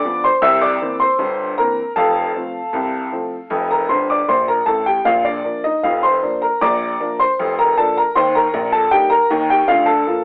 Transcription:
upright piano
Already playing: D5 D6
0.05 F3 B3 D4
0.24 C5 C6
0.42 C2 C3 E5 E6
0.61 D5 D6
0.82 E3 A#3 C4
1.00 C5 C6
1.19 G1 G2
1.58 E3 A#3 C4 A#4 A#5
1.96 F1 F2 A4 F5 A5
2.36 F3 A3 C4
2.73 C2 C3
3.12 F3 A3 C4
3.50 F1 F2
3.71 A#4 A#5
3.89 G1 G2 C5 C6
4.10 D5 D6
4.28 A#1 A#2 C5 C6
4.48 A#4 A#5
4.66 A1 A2 A4 A5
4.86 G4 G5
5.05 A#1 A#2 F4 F5
5.25 D4 D5
5.44 F3 A#3 D4
5.64 D#4 D#5
5.83 F1 F2 F4 F5
6.03 C5 C6
6.22 F3 A#3 D4
6.42 A#4 A#5
6.61 A#1 A#2 D5 A#5 D6
7.00 F3 A#3 D4
7.19 C5 C6
7.39 F1 F2
7.59 A#4 A#5
7.77 F3 A#3 D4 A4 A5
7.97 A#4 A#5
8.16 D#2 D#3 C5 C6
8.35 A#4 A#5
8.54 A#1 A#2
8.72 A4 A5
8.91 G3 A#3 D#4 G4 G5
9.10 A#4 A#5
9.31 D#2 D#3
9.50 G4 G5
9.68 D2 D3 F4 F5
9.86 A4 A5
10.06 F3 A#3 F4

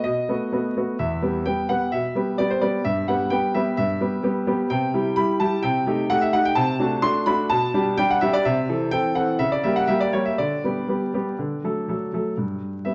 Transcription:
grand piano
0.04 B2 D#5
0.29 A3 B3 F#4
0.52 A3 B3 F#4
0.77 A3 B3 F#4
0.99 E2 E5
1.22 G3 B3 G4
1.46 G3 B3 G4 G5
1.69 G3 B3 G4 F#5
1.92 B2 E5
2.15 G3 B3 G4
2.38 G3 B3 G4 D5
2.50 C5
2.61 G3 B3 G4 D5
2.85 G2 E5
3.08 G3 B3 G4 F#5
3.30 G3 B3 G4 G5
3.54 G3 B3 G4 E5
3.77 G2 E5
4.01 G3 B3 G4
4.23 G3 B3 G4
4.47 G3 B3 G4
4.70 C3 G5
4.94 G3 E4 G4
5.16 G3 E4 G4 B5
5.40 G3 E4 G4 A5
5.63 C3 G5
5.87 A3 D#4 G4
6.10 A3 D#4 G4 F#5
6.21 E5
6.33 A3 D#4 G4 F#5
6.45 G5
6.55 C3 A5
6.79 A3 D4 F#4
7.02 A3 D4 F#4 C6
7.26 A3 D4 F#4 B5
7.50 B2 A5
7.74 G3 D4 G4
7.97 G3 D4 G4 G5
8.10 F#5
8.21 G3 D4 G4 E5
8.33 D5
8.45 C3 E5
8.69 E3 C4 A4
8.91 E3 C4 A4 G5
9.15 E3 C4 A4 F#5
9.39 C#3 E5
9.52 D5
9.64 G3 A#3 G4 E5
9.76 F#5
9.88 G3 A#3 G4 E5
10.00 D5
10.13 G3 A#3 G4 C#5
10.25 E5
10.38 D3 D5
10.64 G3 B3 G4
10.88 G3 B3 G4
11.14 G3 B3 G4
11.39 D3
11.64 F#3 A3 A4
11.88 F#3 A3 A4
12.13 F#3 A3 A4
12.38 G2
12.85 G3 B3 G4 E5

